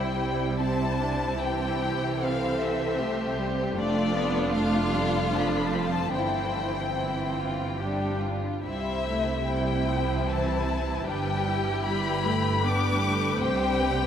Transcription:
0.00 3.72 C2 soft
0.00 3.73 C3 soft
0.00 1.36 G3 soft
0.00 0.18 E4 soft
0.00 0.55 E4 soft
0.00 0.55 C5 soft
0.00 0.59 G5 medium
0.19 0.58 E4 soft
0.60 1.00 C4 soft
0.60 1.39 E4 soft
0.60 1.39 C5 soft
0.60 1.39 A5 medium
0.99 1.39 D4 soft
1.39 2.96 E3 soft
1.39 2.18 E4 soft
1.39 2.21 G4 soft
1.39 2.19 C5 soft
1.39 2.21 G5 medium
2.20 3.76 C4 medium
2.20 2.99 A4 soft
2.20 3.74 C5 soft
2.20 2.61 F5 medium
2.61 3.38 E5 medium
2.97 3.38 A3 medium
2.97 3.75 G4 soft
3.38 3.76 G3 soft
3.75 6.11 F1 medium
3.75 6.12 F2 medium
3.75 4.14 A3 medium
3.75 5.29 D4 medium
3.75 6.14 F4 medium
3.75 6.11 A4 medium
3.75 4.50 D5 medium
4.14 4.52 B3 medium
4.52 4.92 A3 medium
4.52 5.31 F5 medium
4.90 5.31 G3 medium
5.31 6.14 F3 medium
5.31 5.72 D4 medium
5.31 5.41 A5 medium
5.41 5.49 B5 medium
5.49 5.57 A5 medium
5.57 5.65 B5 soft
5.66 5.73 A5 medium
5.72 6.13 C4 soft
5.72 5.81 B5 soft
5.82 6.15 A5 medium
6.14 8.39 G1 soft
6.14 8.40 G2 soft
6.14 7.76 E3 soft
6.14 7.76 C4 soft
6.14 6.88 E4 soft
6.14 6.87 C5 soft
6.14 8.18 G5 medium
6.96 7.35 E4 soft
7.38 7.80 F4 soft
7.80 8.43 G3 soft
7.80 8.43 D4 soft
7.80 8.22 G4 soft
8.22 8.64 F4 soft
8.62 11.03 C2 soft
8.62 11.04 C3 soft
8.62 9.02 G3 soft
8.62 9.43 C4 soft
8.62 9.43 E4 soft
8.62 9.43 C5 soft
8.62 9.44 E5 medium
9.06 9.47 A3 soft
9.46 9.86 G3 soft
9.46 11.04 E4 soft
9.46 11.05 E4 soft
9.46 11.05 C5 soft
9.46 10.28 G5 medium
9.87 10.27 F3 soft
10.26 10.66 E3 medium
10.26 11.09 A5 medium
10.67 11.06 E3 soft
11.06 13.38 G1 soft
11.06 13.38 G2 soft
11.06 11.84 G3 soft
11.06 11.46 D4 soft
11.06 12.61 G4 medium
11.06 11.84 B4 soft
11.06 11.84 G5 medium
11.46 12.65 E4 soft
11.85 12.24 G3 medium
11.85 12.63 B4 soft
11.85 12.63 B5 medium
12.25 12.65 A3 medium
12.64 13.04 B3 medium
12.64 13.42 D4 medium
12.64 14.07 G4 soft
12.64 13.40 B4 medium
12.64 13.43 D6 medium
13.03 13.41 A3 soft
13.40 14.07 C2 medium
13.40 14.07 C3 soft
13.40 14.07 G3 medium
13.40 14.07 C4 soft
13.40 13.80 C5 medium
13.40 14.07 G5 medium
13.80 14.07 B4 medium

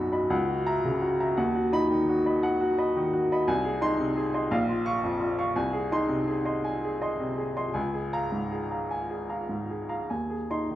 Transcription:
0.00 0.27 B1 medium
0.00 0.34 F#2 medium
0.00 0.16 D#4 medium
0.00 0.34 F#4 medium
0.00 0.12 D#5 medium
0.00 0.31 F#5 medium
0.00 0.12 B5 medium
0.12 0.29 D#5 soft
0.12 0.29 B5 medium
0.30 1.34 C#2 medium
0.30 0.59 F#5 medium
0.48 0.77 F#4 medium
0.66 0.83 E5 medium
0.66 0.83 A#5 medium
0.85 1.13 C#3 medium
1.02 1.30 F#4 medium
1.20 1.36 E5 medium
1.20 1.36 A#5 medium
1.37 3.43 D#2 medium
1.37 1.66 F#5 medium
1.55 1.83 F#4 medium
1.73 2.29 D#4 medium
1.73 1.89 D#5 medium
1.73 1.89 B5 medium
1.91 2.19 D#3 medium
2.09 2.37 F#4 medium
2.26 2.42 D#5 medium
2.26 2.42 B5 medium
2.43 2.71 F#5 medium
2.61 2.89 F#4 medium
2.78 2.94 D#5 medium
2.78 2.94 B5 medium
2.97 3.24 D#3 medium
3.13 3.41 F#4 medium
3.32 3.46 D#5 medium
3.32 3.47 B5 medium
3.48 4.48 C2 medium
3.48 3.75 G#5 medium
3.65 3.92 G#4 medium
3.81 4.37 D#4 medium
3.81 3.97 D#5 medium
3.81 3.97 C6 medium
3.99 4.27 C3 medium
4.17 4.44 G#4 medium
4.34 4.49 D#5 medium
4.34 4.50 C6 medium
4.51 5.52 A#1 medium
4.51 4.79 F5 medium
4.69 4.96 F4 medium
4.86 5.01 F5 medium
4.86 5.01 C#6 medium
5.04 5.31 F2 medium
5.20 5.48 F4 medium
5.39 5.54 F5 medium
5.39 5.54 C#6 medium
5.56 7.72 C2 medium
5.56 5.84 G#5 medium
5.73 6.02 G#4 medium
5.92 6.50 D#4 medium
5.92 6.08 D#5 medium
5.92 6.08 C6 medium
6.09 6.38 C3 medium
6.28 6.57 G#4 medium
6.45 6.62 D#5 medium
6.45 6.62 C6 medium
6.64 6.94 G#5 medium
6.84 7.13 G#4 medium
7.01 7.18 D#5 medium
7.01 7.19 C6 medium
7.20 7.50 C3 medium
7.37 7.68 G#4 medium
7.57 7.74 D#5 medium
7.57 7.74 C6 medium
7.74 10.05 C#2 medium
7.74 8.05 G#5 medium
7.94 8.25 G#4 medium
8.13 8.31 F5 medium
8.13 8.31 A#5 medium
8.32 8.63 G#2 medium
8.51 8.82 G#4 medium
8.71 8.88 F5 soft
8.71 8.88 A#5 soft
8.91 9.21 G#5 medium
9.09 9.41 G#4 soft
9.29 9.47 F5 soft
9.29 9.47 A#5 medium
9.49 9.81 G#2 soft
9.70 10.02 G#4 soft
9.89 10.08 F5 soft
9.89 10.08 A#5 medium
10.10 10.75 D#2 soft
10.10 10.43 G#5 medium
10.30 10.63 G#4 soft
10.50 10.75 D#4 soft
10.50 10.69 D#5 soft
10.50 10.69 C6 medium
10.71 10.75 D#3 soft

